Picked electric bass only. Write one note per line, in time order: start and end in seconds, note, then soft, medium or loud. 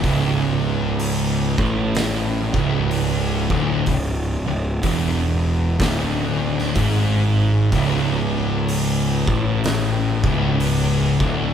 0.03 1.54 C#1 loud
1.58 2.50 A1 medium
2.54 3.46 C#1 loud
3.50 3.85 D1 medium
3.87 4.42 C#1 medium
4.47 4.81 C#1 medium
4.83 5.75 E1 medium
5.79 6.72 D1 medium
6.76 7.68 G#1 loud
7.72 9.23 C#1 loud
9.27 10.20 A1 medium
10.23 11.16 C#1 loud
11.20 11.54 D1 medium